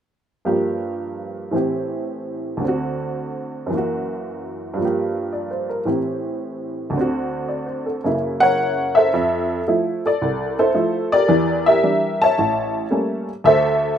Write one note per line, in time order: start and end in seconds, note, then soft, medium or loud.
0.45 1.53 G2 soft
0.45 1.54 F3 soft
0.45 1.54 A#3 soft
0.45 1.54 G4 medium
1.51 2.61 A2 soft
1.51 2.61 E3 soft
1.51 2.62 C4 soft
1.56 2.63 G4 medium
2.57 3.68 D2 medium
2.57 3.70 D3 soft
2.64 3.72 C4 soft
2.64 3.73 F#4 medium
3.66 4.77 F#2 soft
3.66 4.79 E3 soft
3.74 4.80 A#3 soft
3.74 4.82 F#4 medium
4.74 5.85 G2 soft
4.74 5.87 F3 soft
4.81 5.89 A#3 soft
4.85 5.86 G4 medium
5.33 5.67 D5 soft
5.51 5.79 C5 soft
5.69 5.98 A#4 soft
5.85 6.95 A2 soft
5.85 6.95 E3 soft
5.85 6.96 C4 soft
5.85 6.96 G4 soft
6.90 8.01 D2 medium
6.90 8.03 D3 medium
6.97 8.05 C4 medium
6.97 8.07 F#4 medium
7.48 7.84 D5 soft
7.67 7.96 C5 soft
7.86 8.14 A4 soft
8.04 9.12 F#2 soft
8.04 9.13 C#3 soft
8.04 9.13 A#3 soft
8.04 9.13 E4 medium
8.40 9.09 A#4 medium
8.40 9.09 C#5 medium
8.40 8.97 F#5 loud
8.95 10.01 A4 medium
8.95 10.00 C5 medium
8.95 9.62 E5 medium
9.14 9.60 F2 medium
9.68 10.06 F3 medium
9.68 10.06 A3 soft
9.68 10.06 E4 medium
10.06 10.58 A4 medium
10.06 10.56 D5 medium
10.22 10.68 C2 medium
10.59 10.73 E4 medium
10.59 11.25 A4 medium
10.59 11.09 C5 medium
10.74 11.13 F3 soft
10.74 11.13 A3 soft
10.74 11.13 E4 soft
11.12 11.66 G4 medium
11.12 11.66 A#4 medium
11.12 11.68 D5 loud
11.28 11.76 E2 medium
11.28 11.76 E3 medium
11.66 12.33 G4 medium
11.66 12.34 A#4 medium
11.66 12.22 E5 medium
11.83 12.22 E3 soft
11.83 12.22 G3 soft
11.83 12.22 D4 medium
12.22 13.25 C#5 medium
12.22 13.25 E5 medium
12.22 13.25 A5 loud
12.38 12.84 A1 medium
12.91 13.29 G3 soft
12.91 13.29 A3 soft
12.91 13.30 A#3 soft
12.91 13.30 C#4 medium
13.44 13.91 D2 medium
13.44 13.98 A4 medium
13.44 13.98 C5 medium
13.44 13.95 E5 medium